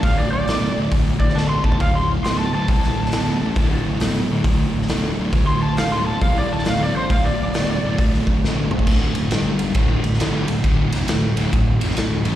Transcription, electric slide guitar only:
0.04 0.18 F5 medium
0.18 0.31 D5 medium
0.33 0.76 D5 medium
1.20 1.35 D5 loud
1.35 1.49 A5 medium
1.49 1.64 C6 medium
1.66 1.80 A5 medium
1.81 1.95 F5 loud
1.95 2.10 C6 loud
2.25 2.39 C6 loud
2.39 2.53 A5 medium
2.55 3.83 A5 loud
5.47 5.62 C6 loud
5.63 5.77 A5 medium
5.77 5.92 F5 loud
5.92 6.06 C6 medium
6.07 6.21 A5 loud
6.22 6.36 F5 medium
6.38 6.52 D5 loud
6.53 6.67 A5 loud
6.67 6.81 F5 medium
6.83 6.96 D5 loud
6.97 7.11 C5 medium
7.11 7.25 F5 medium
7.24 8.11 D5 loud

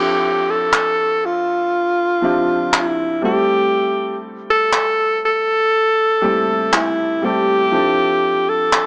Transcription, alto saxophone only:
0.00 0.52 G4 medium
0.50 1.27 A4 medium
1.25 2.76 F4 loud
2.75 3.24 E4 medium
3.25 4.18 G4 medium
4.50 5.20 A4 loud
5.25 6.76 A4 loud
6.75 7.26 E4 medium
7.25 8.51 G4 loud
8.49 8.86 A4 medium

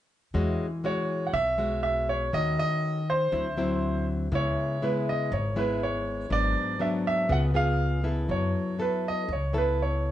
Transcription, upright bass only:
0.34 0.57 E2 medium
1.33 2.29 B1 loud
2.33 2.56 D#2 medium
3.32 4.28 D2 medium
4.32 4.55 C#2 medium
5.32 6.27 G#1 loud
6.30 6.53 G#1 medium
7.29 8.25 C#2 medium
8.29 8.52 F#2 medium
9.28 10.12 C#2 medium

